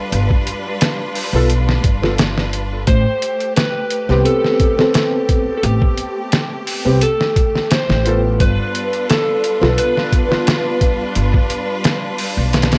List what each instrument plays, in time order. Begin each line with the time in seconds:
Already playing: string section G3 D4 F4 B4
0.12 upright bass G1, closed hi-hat
0.30 kick
0.47 closed hi-hat
0.81 snare, closed hi-hat
1.15 open hi-hat
1.33 upright bass B1, felt piano B3 F4 A4
1.50 closed hi-hat
1.69 snare
1.84 upright bass G1, kick, closed hi-hat
2.02 felt piano B3 F4 A4, snare
2.18 snare, closed hi-hat
2.38 snare
2.53 closed hi-hat
2.86 upright bass A1, string section A3 G4, electric slide guitar C5, kick, closed hi-hat
3.22 closed hi-hat
3.40 closed hi-hat
3.56 electric slide guitar B4, snare, closed hi-hat
3.90 closed hi-hat
4.09 upright bass C2, felt piano B3 C4 G4, snare
4.25 electric slide guitar A4, closed hi-hat
4.44 snare
4.60 kick, closed hi-hat
4.77 felt piano B3 C4 A4, snare
4.94 snare, closed hi-hat
5.29 kick, closed hi-hat
5.57 electric slide guitar A4
5.63 upright bass A1, electric slide guitar G4, closed hi-hat
5.82 kick
5.98 closed hi-hat
6.32 snare, closed hi-hat
6.67 open hi-hat
6.85 upright bass C2, felt piano B3 C4 G4
7.01 electric slide guitar A4, closed hi-hat
7.21 snare
7.36 kick, closed hi-hat
7.55 snare
7.71 electric slide guitar C5, snare, closed hi-hat
7.89 upright bass A1, snare
8.05 felt piano B3 F4 A4, closed hi-hat
8.39 upright bass G1, string section G3 D4 F4 B4, electric slide guitar B4, kick, closed hi-hat
8.75 closed hi-hat
8.93 closed hi-hat
9.10 electric slide guitar A4, snare, closed hi-hat
9.44 closed hi-hat
9.61 upright bass B1, felt piano B3 F4 A4, snare
9.78 electric slide guitar B4, closed hi-hat
9.97 snare
10.12 kick, closed hi-hat
10.29 felt piano B3 F4 B4, snare
10.47 snare, closed hi-hat
10.81 kick, closed hi-hat
11.15 upright bass G1, closed hi-hat
11.34 kick
11.50 closed hi-hat
11.84 snare, closed hi-hat
12.18 open hi-hat
12.37 upright bass B1
12.53 snare, closed hi-hat
12.62 snare, closed hi-hat
12.72 snare, closed hi-hat